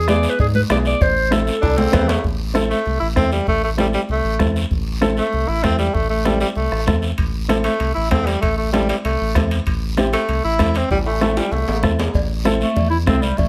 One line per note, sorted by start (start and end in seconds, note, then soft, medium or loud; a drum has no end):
0.00 0.27 E2 loud
0.08 0.30 B3 medium
0.08 0.30 E4 medium
0.08 0.30 G#4 medium
0.08 0.31 D5 loud
0.08 bombo rim medium
0.08 cowbell medium
0.08 high conga medium
0.08 short guiro medium
0.23 short guiro medium
0.29 0.39 B4 medium
0.39 0.64 G#2 medium
0.39 0.47 G#4 medium
0.39 bombo low medium
0.39 cowbell medium
0.39 long guiro medium
0.55 0.62 B4 medium
0.55 high conga medium
0.69 0.95 B1 loud
0.69 0.91 B3 medium
0.69 0.92 E4 medium
0.69 0.92 G#4 medium
0.69 0.78 D5 medium
0.69 bombo rim loud
0.69 cowbell medium
0.69 high conga medium
0.69 short guiro medium
0.85 1.03 D5 loud
0.85 short guiro medium
1.01 1.50 A1 loud
1.01 1.34 C5 medium
1.01 bombo low medium
1.01 cowbell loud
1.01 long guiro medium
1.30 1.53 C4 medium
1.30 1.53 E4 medium
1.30 1.53 A4 medium
1.30 2.09 A4 medium
1.30 bombo rim medium
1.30 cowbell medium
1.30 high conga medium
1.30 short guiro medium
1.47 short guiro medium
1.62 1.87 C2 medium
1.62 1.79 D4 loud
1.62 bombo low medium
1.62 cowbell medium
1.62 high timbale medium
1.62 long guiro medium
1.77 2.10 C4 medium
1.77 high conga medium
1.77 low timbale medium
1.92 2.18 E2 loud
1.92 2.14 C4 medium
1.92 2.15 E4 medium
1.92 2.15 B4 medium
1.92 bombo low medium
1.92 bombo rim medium
1.92 cowbell medium
1.92 high conga medium
1.92 low conga medium
1.92 low timbale medium
1.92 short guiro medium
2.08 2.24 A3 medium
2.08 low timbale loud
2.08 short guiro medium
2.24 2.73 A1 medium
2.24 bombo low medium
2.24 high conga soft
2.24 long guiro medium
2.54 2.76 C4 medium
2.54 2.76 E4 medium
2.54 2.77 A4 medium
2.54 bombo rim medium
2.54 high conga medium
2.54 short guiro medium
2.70 2.99 A3 medium
2.70 short guiro medium
2.86 2.98 C2 medium
2.86 high conga soft
2.86 long guiro medium
3.00 3.18 A1 medium
3.00 3.07 E4 medium
3.16 3.41 E2 medium
3.16 3.38 C4 medium
3.16 3.31 C4 loud
3.16 3.38 E4 medium
3.16 3.38 A4 medium
3.16 bombo low medium
3.16 bombo rim medium
3.16 high conga medium
3.16 short guiro medium
3.32 3.47 G3 medium
3.32 short guiro medium
3.47 3.97 A1 medium
3.47 3.62 A3 loud
3.47 bombo low medium
3.47 high conga soft
3.47 long guiro medium
3.64 3.71 A3 medium
3.77 3.86 G3 medium
3.77 4.00 C4 medium
3.77 4.00 E4 medium
3.77 4.00 A4 medium
3.77 bombo rim medium
3.77 high conga medium
3.77 short guiro medium
3.93 4.01 G3 medium
3.93 short guiro medium
4.09 4.21 C2 medium
4.09 4.39 A3 medium
4.09 high conga soft
4.09 long guiro medium
4.24 4.41 A1 medium
4.39 4.65 E2 medium
4.39 4.61 C4 medium
4.39 4.62 E4 medium
4.39 4.62 A4 medium
4.39 bombo low medium
4.39 bombo rim medium
4.39 high conga medium
4.39 short guiro medium
4.56 short guiro medium
4.71 5.20 A1 medium
4.71 bombo low medium
4.71 high conga soft
4.71 long guiro medium
5.01 5.23 C4 medium
5.01 5.24 E4 medium
5.01 5.24 A4 medium
5.01 bombo rim medium
5.01 high conga medium
5.01 short guiro medium
5.17 5.50 A3 medium
5.17 short guiro medium
5.33 5.45 C2 medium
5.33 high conga soft
5.33 long guiro medium
5.48 5.65 A1 medium
5.48 5.65 E4 medium
5.63 5.89 E2 loud
5.63 5.78 C4 medium
5.63 5.85 C4 medium
5.63 5.85 E4 medium
5.63 5.86 A4 medium
5.63 bombo low medium
5.63 bombo rim medium
5.63 high conga medium
5.63 short guiro medium
5.79 5.96 G3 medium
5.79 short guiro medium
5.94 6.44 A1 medium
5.94 6.10 A3 medium
5.94 bombo low medium
5.94 high conga soft
5.94 long guiro medium
6.10 6.28 A3 medium
6.25 6.40 G3 medium
6.25 6.47 C4 medium
6.25 6.47 E4 medium
6.25 6.48 A4 medium
6.25 bombo rim medium
6.25 high conga medium
6.25 short guiro medium
6.40 6.48 G3 medium
6.40 short guiro medium
6.55 6.69 C2 medium
6.55 6.85 A3 medium
6.55 high conga soft
6.55 long guiro medium
6.72 6.89 A1 medium
6.72 bombo rim medium
6.86 7.12 E2 loud
6.86 7.09 C4 medium
6.86 7.09 E4 soft
6.86 7.09 A4 medium
6.86 bombo low medium
6.86 bombo rim medium
6.86 high conga medium
6.86 short guiro medium
7.02 short guiro medium
7.18 7.68 A1 medium
7.18 bombo low medium
7.18 high conga soft
7.18 high timbale medium
7.18 long guiro medium
7.49 7.71 C4 medium
7.49 7.71 E4 medium
7.49 7.71 A4 medium
7.49 bombo rim medium
7.49 high conga medium
7.49 high timbale medium
7.49 short guiro medium
7.64 7.93 A3 medium
7.64 high timbale medium
7.64 short guiro medium
7.80 7.92 C2 medium
7.80 high conga soft
7.80 high timbale medium
7.80 long guiro medium
7.95 8.13 A1 medium
7.95 8.10 E4 medium
8.11 8.36 E2 medium
8.11 8.27 C4 medium
8.11 8.33 C4 medium
8.11 8.33 E4 medium
8.11 8.34 A4 medium
8.11 bombo low medium
8.11 bombo rim medium
8.11 high conga medium
8.11 high timbale medium
8.11 low timbale medium
8.11 short guiro medium
8.26 8.41 G3 medium
8.26 high timbale medium
8.26 short guiro medium
8.41 8.92 A1 loud
8.41 8.56 A3 medium
8.41 bombo low medium
8.41 high conga soft
8.41 high timbale medium
8.41 long guiro medium
8.58 8.72 A3 medium
8.73 8.87 G3 medium
8.73 8.95 C4 medium
8.73 8.96 E4 medium
8.73 8.96 A4 medium
8.73 bombo rim medium
8.73 high conga medium
8.73 high timbale medium
8.73 short guiro medium
8.89 8.96 G3 medium
8.89 high timbale medium
8.89 short guiro medium
9.05 9.17 C2 loud
9.05 9.34 A3 medium
9.05 high conga soft
9.05 high timbale medium
9.05 long guiro medium
9.21 9.37 A1 medium
9.35 9.60 E2 loud
9.35 9.57 C4 medium
9.35 9.57 E4 medium
9.35 9.58 A4 medium
9.35 bombo low medium
9.35 bombo rim medium
9.35 high conga medium
9.35 high timbale medium
9.35 short guiro medium
9.51 high timbale medium
9.51 short guiro medium
9.66 10.16 A1 loud
9.66 bombo low medium
9.66 high conga soft
9.66 high timbale medium
9.66 long guiro medium
9.97 10.19 C4 medium
9.97 10.19 E4 medium
9.97 10.20 G4 medium
9.97 bombo rim medium
9.97 high conga medium
9.97 high timbale medium
9.97 short guiro medium
10.13 10.42 A3 medium
10.13 high timbale medium
10.13 short guiro medium
10.28 10.41 C2 loud
10.28 high conga soft
10.28 high timbale medium
10.28 long guiro medium
10.44 10.61 A1 medium
10.44 10.78 E4 loud
10.59 10.84 E2 medium
10.59 10.81 C4 medium
10.59 10.81 E4 medium
10.59 10.81 A4 medium
10.59 bombo low medium
10.59 bombo rim medium
10.59 high conga medium
10.59 high timbale medium
10.59 short guiro medium
10.74 10.90 C4 medium
10.74 high timbale medium
10.74 short guiro medium
10.90 11.40 A1 medium
10.90 10.98 G3 medium
10.90 bombo low medium
10.90 high conga soft
10.90 high timbale medium
10.90 long guiro medium
11.06 11.35 A3 medium
11.06 high timbale medium
11.21 11.43 C4 medium
11.21 11.43 E4 medium
11.21 11.43 A4 medium
11.21 bombo rim medium
11.21 high conga medium
11.21 high timbale medium
11.21 short guiro medium
11.37 11.54 G3 medium
11.37 high timbale loud
11.37 short guiro medium
11.52 11.64 C2 medium
11.52 11.84 A3 medium
11.52 high conga soft
11.52 low timbale medium
11.52 long guiro medium
11.68 11.85 A1 medium
11.68 low timbale medium
11.83 12.08 E2 medium
11.83 12.05 C4 medium
11.83 12.05 E4 medium
11.83 12.05 A4 medium
11.83 bombo low medium
11.83 bombo rim medium
11.83 high conga medium
11.83 short guiro medium
11.99 low timbale medium
11.99 short guiro medium
12.14 12.64 A1 loud
12.14 bombo low medium
12.14 cowbell loud
12.14 high conga soft
12.14 long guiro medium
12.45 12.67 C4 medium
12.45 12.67 E4 medium
12.45 12.67 A4 medium
12.45 bombo rim medium
12.45 high conga medium
12.45 short guiro medium
12.61 12.89 A3 medium
12.61 short guiro medium
12.76 13.09 E2 medium
12.76 cowbell medium
12.76 high conga soft
12.76 low conga medium
12.76 long guiro medium
12.90 12.97 E4 medium
13.05 13.32 C2 medium
13.05 13.23 C4 medium
13.05 13.29 C4 medium
13.05 13.29 E4 medium
13.05 13.29 A4 medium
13.05 bombo low medium
13.05 bombo rim medium
13.05 high conga medium
13.05 short guiro medium
13.21 13.39 G3 medium
13.21 short guiro medium
13.37 13.49 A1 loud
13.37 13.49 A3 medium
13.37 bombo low medium
13.37 cowbell medium
13.37 high conga soft
13.37 low conga medium
13.37 long guiro medium